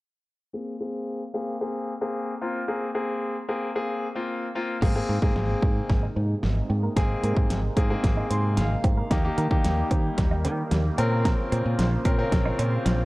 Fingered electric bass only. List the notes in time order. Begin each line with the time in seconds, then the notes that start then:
4.82 G#1
5.09 G#2
5.22 G#2
5.36 G#1
5.62 G#2
5.89 G#1
6.16 G#2
6.43 G#1
6.70 G#2
6.97 G#1
7.23 G#2
7.36 G#2
7.50 G#1
7.77 G#2
8.04 G#1
8.30 G#2
8.57 G#1
8.84 G#2
9.11 D#2
9.38 D#3
9.51 D#3
9.64 D#2
9.91 D#3
10.18 D#2
10.45 D#3
10.72 D#2
10.98 A#2
11.52 A#2
11.65 A#2
11.79 A#1
12.05 A#2
12.32 A#1
12.59 A#2
12.86 A#1